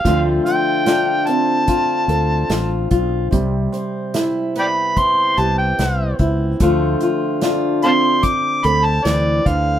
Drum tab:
HH |xxxxxxxx|xxxxxxxx|xxxxxxxx|
SD |--o---o-|--o---o-|--o---o-|
BD |o---o--o|o---o--o|o---o--o|